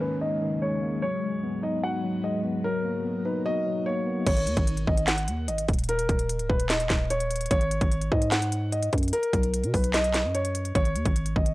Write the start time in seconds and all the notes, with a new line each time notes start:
Already playing: D#2 C#3 D#3 G#3 A#3, downlifter
0.01 C#4 B4
0.21 D#4 D#5
0.42 D#3
0.61 G#3 C#5
0.82 A#3
1.02 G#2 F#3 B3 C#5
1.23 G#3
1.43 B3
1.63 D#4 D#5
1.83 F#4 F#5
2.04 F#3
2.24 G#3 D#5
2.44 B3
2.64 B2 F#3 D#4 A#4
2.85 A#3
3.05 B3
3.25 D#4 B4
3.46 F#4 D#5
3.66 F#3
3.86 A#3 C#5
4.06 B3
4.27 G#1 C#5, kick, closed hi-hat, crash
4.37 closed hi-hat
4.47 D#2, closed hi-hat
4.57 G#1, kick, closed hi-hat
4.67 closed hi-hat
4.77 closed hi-hat
4.87 G#1 D#5, kick
4.97 closed hi-hat
5.07 F#5, snare, clap, closed hi-hat
5.18 closed hi-hat
5.28 D#2, closed hi-hat
5.48 G#1 D#5, closed hi-hat
5.58 closed hi-hat
5.68 D#1, kick, closed hi-hat
5.74 closed hi-hat
5.79 closed hi-hat
5.84 closed hi-hat
5.89 A#4, closed hi-hat
5.99 closed hi-hat
6.09 D#1, kick, closed hi-hat
6.19 closed hi-hat
6.29 closed hi-hat
6.39 C#1, closed hi-hat
6.49 D#1 B4, kick
6.60 closed hi-hat
6.69 D#5, snare, clap, closed hi-hat
6.80 closed hi-hat
6.90 D#1, kick, snare, clap, closed hi-hat
7.10 C#5, closed hi-hat
7.20 closed hi-hat
7.31 closed hi-hat
7.36 closed hi-hat
7.41 closed hi-hat
7.46 closed hi-hat
7.51 G#1 C#5, kick, closed hi-hat
7.61 closed hi-hat
7.71 closed hi-hat
7.81 G#1, kick, closed hi-hat
7.92 closed hi-hat
8.02 closed hi-hat
8.12 G#2 D#5, kick
8.22 closed hi-hat
8.31 F#5, snare, clap, closed hi-hat
8.42 closed hi-hat
8.52 closed hi-hat
8.72 D#5, closed hi-hat
8.83 closed hi-hat
8.93 F#2, kick, closed hi-hat
8.98 closed hi-hat
9.03 closed hi-hat
9.08 closed hi-hat
9.13 A#4, closed hi-hat
9.23 closed hi-hat
9.33 B1, kick, closed hi-hat
9.43 closed hi-hat
9.54 closed hi-hat
9.64 B2, closed hi-hat
9.74 B1 B4, kick, open hi-hat
9.84 closed hi-hat
9.94 D#5, snare, clap, closed hi-hat
10.04 closed hi-hat
10.14 snare, clap, closed hi-hat
10.24 F#2
10.35 C#5, closed hi-hat
10.45 closed hi-hat
10.55 closed hi-hat
10.65 closed hi-hat
10.75 G#1 C#5, kick, closed hi-hat
10.85 closed hi-hat
10.95 D#2, closed hi-hat
11.05 G#1, kick, closed hi-hat
11.16 closed hi-hat
11.26 closed hi-hat
11.36 G#1 D#5, kick
11.46 closed hi-hat